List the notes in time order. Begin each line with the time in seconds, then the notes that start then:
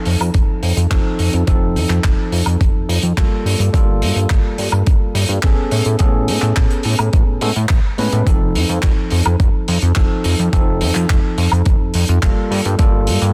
Already playing: F3 C4 D#4 A4
0.05 F2, open hi-hat
0.21 F2, closed hi-hat, high woodblock
0.34 F1, kick, closed hi-hat
0.63 F2, open hi-hat
0.77 F2, closed hi-hat
0.90 F1 F3 C4 D#4 A4, kick, clap, closed hi-hat
1.19 F2, open hi-hat
1.33 F2, closed hi-hat
1.47 F1 F3 C4 D#4 A4, kick, closed hi-hat
1.75 F2, open hi-hat
1.89 F2, clap, closed hi-hat
2.04 F1, kick, clap, closed hi-hat
2.32 F2, open hi-hat
2.46 F2, closed hi-hat, high woodblock
2.61 F1, kick, closed hi-hat
2.75 F2
2.89 F2, open hi-hat
3.03 F2, closed hi-hat
3.17 F1 G3 A#3 F4 A4, kick, clap, closed hi-hat
3.45 G2, open hi-hat
3.60 G2, closed hi-hat
3.73 G1 G3 A#3 F4 A4, kick, closed hi-hat
4.02 G2, open hi-hat
4.16 G2, closed hi-hat
4.30 G1, kick, clap, closed hi-hat
4.58 G2, open hi-hat
4.72 G2, closed hi-hat, high woodblock
4.87 G1, kick, closed hi-hat
5.15 G2, open hi-hat
5.29 G2, closed hi-hat
5.43 G1 B3 C#4 G#4 A4, kick, clap, closed hi-hat
5.71 A2, open hi-hat
5.85 A2, closed hi-hat
5.99 A1 B3 C#4 G#4 A4, kick, closed hi-hat
6.28 A2, open hi-hat
6.42 A2, clap, closed hi-hat
6.56 A1, kick, clap, closed hi-hat
6.70 closed hi-hat
6.83 A2, open hi-hat
6.99 A2, closed hi-hat, high woodblock
7.13 A1, kick, closed hi-hat
7.28 A2
7.41 A2 G#3 B3 C#4 A4, open hi-hat
7.56 A2, closed hi-hat
7.69 A1, kick, clap, closed hi-hat
7.98 A2 G#3 B3 C#4 B4, open hi-hat
8.12 A2, closed hi-hat
8.25 F1 F3 C4 D#4 A4, kick, closed hi-hat
8.55 F2, open hi-hat
8.69 F2, closed hi-hat
8.82 F1, kick, clap, closed hi-hat
9.10 F2, open hi-hat
9.25 F2, closed hi-hat, high woodblock
9.40 F1, kick, closed hi-hat
9.68 F2, open hi-hat
9.82 F2, closed hi-hat
9.95 F1 F3 C4 D#4 A4, kick, clap, closed hi-hat
10.24 F2, open hi-hat
10.39 F2, closed hi-hat
10.52 F1 F3 C4 D#4 A4, kick, closed hi-hat
10.81 F2, open hi-hat
10.95 F2, clap, closed hi-hat
11.10 F1, kick, clap, closed hi-hat
11.38 F2, open hi-hat
11.52 F2, closed hi-hat, high woodblock
11.65 F1, kick, closed hi-hat
11.81 F2
11.94 F2, open hi-hat
12.08 F2, closed hi-hat
12.22 F1 G3 A#3 F4 A4, kick, clap, closed hi-hat
12.51 G2, open hi-hat
12.65 G2, closed hi-hat
12.78 G1 G3 A#3 F4 A4, kick, closed hi-hat
13.07 G2, open hi-hat
13.21 G2, closed hi-hat